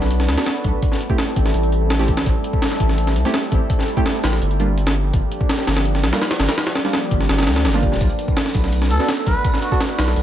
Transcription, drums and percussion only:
0.02 snare soft
0.11 closed hi-hat medium
0.20 snare soft
0.29 snare loud
0.29 closed hi-hat medium
0.38 snare loud
0.38 closed hi-hat medium
0.46 snare loud
0.46 closed hi-hat medium
0.64 kick medium
0.64 closed hi-hat medium
0.82 kick loud
0.82 closed hi-hat medium
0.92 snare soft
1.01 closed hi-hat medium
1.10 kick loud
1.18 snare loud
1.18 closed hi-hat medium
1.36 kick medium
1.36 closed hi-hat medium
1.46 snare medium
1.54 closed hi-hat medium
1.63 closed hi-hat soft
1.72 closed hi-hat medium
1.90 snare loud
1.90 closed hi-hat medium
1.99 snare medium
2.08 kick medium
2.08 closed hi-hat medium
2.17 snare loud
2.17 closed hi-hat medium
2.26 kick loud
2.26 closed hi-hat medium
2.44 closed hi-hat medium
2.53 kick loud
2.62 snare loud
2.62 closed hi-hat medium
2.71 snare medium
2.80 kick medium
2.80 closed hi-hat medium
2.89 snare soft
2.98 closed hi-hat medium
3.07 snare soft
3.16 closed hi-hat medium
3.25 snare soft
3.34 snare loud
3.34 closed hi-hat medium
3.52 kick loud
3.52 closed hi-hat medium
3.70 kick loud
3.70 closed hi-hat medium
3.79 snare soft
3.88 closed hi-hat medium
3.97 kick loud
4.06 snare loud
4.06 closed hi-hat medium
4.24 snare loud
4.24 closed hi-hat medium
4.33 snare medium
4.42 closed hi-hat medium
4.51 closed hi-hat soft
4.60 closed hi-hat medium
4.78 closed hi-hat medium
4.87 snare loud
5.14 kick loud
5.14 closed hi-hat medium
5.32 closed hi-hat medium
5.41 kick loud
5.49 snare loud
5.49 closed hi-hat medium
5.59 snare medium
5.67 snare loud
5.67 closed hi-hat medium
5.77 snare loud
5.77 closed hi-hat medium
5.85 closed hi-hat medium
5.95 snare soft
6.04 snare loud
6.04 closed hi-hat medium
6.13 snare loud
6.13 closed hi-hat medium
6.22 snare loud
6.22 closed hi-hat medium
6.31 snare loud
6.31 closed hi-hat medium
6.40 snare loud
6.40 closed hi-hat medium
6.49 snare loud
6.49 closed hi-hat medium
6.58 snare loud
6.58 closed hi-hat medium
6.67 snare loud
6.67 closed hi-hat medium
6.75 snare loud
6.75 closed hi-hat medium
6.85 snare medium
6.93 snare loud
6.93 closed hi-hat medium
7.11 kick loud
7.11 closed hi-hat medium
7.20 snare medium
7.29 snare loud
7.29 closed hi-hat medium
7.38 snare medium
7.38 closed hi-hat medium
7.43 snare medium
7.43 closed hi-hat medium
7.47 snare loud
7.47 closed hi-hat medium
7.56 snare loud
7.56 closed hi-hat medium
7.65 snare loud
7.65 closed hi-hat medium
7.74 snare medium
7.83 kick medium
7.83 closed hi-hat medium
7.92 snare soft
8.01 kick loud
8.01 closed hi-hat medium
8.01 tambourine loud
8.09 closed hi-hat soft
8.19 closed hi-hat medium
8.19 tambourine medium
8.28 kick loud
8.37 snare loud
8.37 closed hi-hat medium
8.37 open hi-hat medium
8.46 snare medium
8.54 kick loud
8.54 closed hi-hat medium
8.54 tambourine medium
8.64 snare soft
8.72 closed hi-hat medium
8.72 tambourine loud
8.82 snare medium
8.82 snare soft
8.91 closed hi-hat medium
8.91 tambourine medium
9.00 snare soft
9.08 snare loud
9.08 closed hi-hat medium
9.08 tambourine medium
9.26 kick loud
9.26 snare medium
9.26 closed hi-hat medium
9.26 tambourine medium
9.45 kick loud
9.45 closed hi-hat medium
9.45 tambourine medium
9.54 snare soft
9.54 closed hi-hat soft
9.62 closed hi-hat medium
9.62 tambourine medium
9.72 kick medium
9.72 snare soft
9.80 snare loud
9.80 closed hi-hat medium
9.80 tambourine loud
9.90 closed hi-hat soft
9.98 snare loud
9.98 closed hi-hat medium
9.98 tambourine medium
10.08 snare medium
10.16 closed hi-hat medium
10.16 tambourine loud

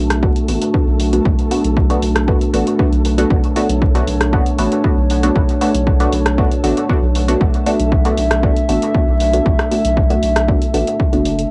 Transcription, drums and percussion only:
0.10 cross-stick medium
0.10 closed hi-hat soft
0.23 kick loud
0.36 closed hi-hat soft
0.48 open hi-hat medium
0.62 closed hi-hat soft
0.74 kick loud
1.00 open hi-hat medium
1.13 closed hi-hat medium
1.25 kick loud
1.39 closed hi-hat soft
1.51 open hi-hat medium
1.64 closed hi-hat soft
1.77 kick loud
1.90 closed hi-hat soft
2.02 open hi-hat medium
2.16 cross-stick medium
2.16 closed hi-hat soft
2.28 kick loud
2.41 closed hi-hat soft
2.54 open hi-hat medium
2.67 closed hi-hat soft
2.79 kick loud
2.93 closed hi-hat soft
3.05 open hi-hat medium
3.18 closed hi-hat soft
3.30 kick loud
3.44 closed hi-hat soft
3.56 open hi-hat medium
3.69 closed hi-hat soft
3.82 kick loud
3.95 closed hi-hat soft
4.07 open hi-hat medium
4.21 cross-stick medium
4.21 closed hi-hat soft
4.33 kick loud
4.46 closed hi-hat soft
4.59 open hi-hat medium
4.72 closed hi-hat soft
4.84 kick loud
5.10 open hi-hat medium
5.23 closed hi-hat soft
5.36 kick loud
5.49 closed hi-hat soft
5.61 open hi-hat medium
5.75 closed hi-hat soft
5.87 kick loud
6.00 closed hi-hat soft
6.12 open hi-hat medium
6.26 cross-stick medium
6.26 closed hi-hat soft
6.38 kick loud
6.51 closed hi-hat soft
6.64 open hi-hat medium
6.77 closed hi-hat soft
6.89 kick loud
7.15 open hi-hat medium
7.28 closed hi-hat soft
7.41 kick loud
7.54 closed hi-hat soft
7.66 open hi-hat medium
7.80 closed hi-hat soft
7.92 kick loud
8.05 closed hi-hat soft
8.18 open hi-hat medium
8.31 cross-stick medium
8.31 closed hi-hat soft
8.43 kick loud
8.56 closed hi-hat soft
8.69 open hi-hat medium
8.82 closed hi-hat soft
8.94 kick loud
9.20 open hi-hat medium
9.33 closed hi-hat soft
9.46 kick loud
9.59 cross-stick medium
9.59 closed hi-hat soft
9.71 open hi-hat medium
9.85 closed hi-hat soft
9.97 kick loud
10.10 closed hi-hat soft
10.23 open hi-hat medium
10.36 cross-stick medium
10.36 closed hi-hat soft
10.48 kick loud
10.62 closed hi-hat soft
10.74 open hi-hat medium
10.87 closed hi-hat soft
11.00 kick loud
11.13 closed hi-hat soft
11.25 open hi-hat medium
11.39 closed hi-hat soft

